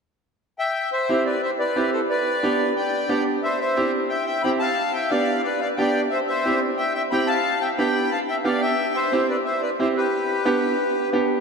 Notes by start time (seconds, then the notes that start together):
0.59 E5 G5
0.92 C5 E5
1.09 C4 E4 G4
1.26 B4 D5
1.43 C5 E5
1.59 B4 D5
1.76 C4 E4 G4
1.92 A4 C5
2.10 B4 D5
2.43 B3 D4 G4
2.76 D5 G5
3.09 B3 D4 G4
3.43 C5 E5
3.59 C5 E5
3.77 C4 E4 G4
4.09 E5 G5
4.25 E5 G5
4.42 C4 E4 G4 G5 B5
4.59 F5 A5
4.93 E5 G5
5.10 B3 D4 G4 D5 F5
5.43 B4 D5
5.60 D5 F5
5.77 B3 D4 G4 D5 G5
6.10 C5 E5
6.27 C5 E5
6.45 C4 E4 G4
6.77 E5 G5
6.94 E5 G5
7.11 C4 E4 G4 G5 B5
7.27 F5 A5
7.61 E5 G5
7.78 B3 D4 G4 G5 B5
8.11 F5 A5
8.28 E5 G5
8.44 B3 D4 G4 D5 F5
8.61 E5 G5
8.95 C5 E5
9.12 C4 E4 G4
9.28 B4 D5
9.45 C5 E5
9.62 B4 D5
9.79 C4 E4 G4 C5 E5
9.97 G4 B4
10.45 B3 D4 G4
11.13 B3 D4 G4